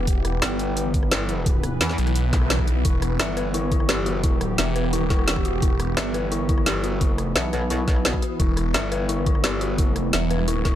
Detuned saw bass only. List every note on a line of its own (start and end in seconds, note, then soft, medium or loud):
0.07 0.41 E1 loud
1.98 2.83 B1 loud
2.85 3.18 E1 loud
4.58 5.09 E1 loud
5.10 5.61 E1 loud
5.62 5.96 E1 medium
8.40 8.73 E1 loud
10.13 10.64 E1 loud
10.65 10.75 E1 loud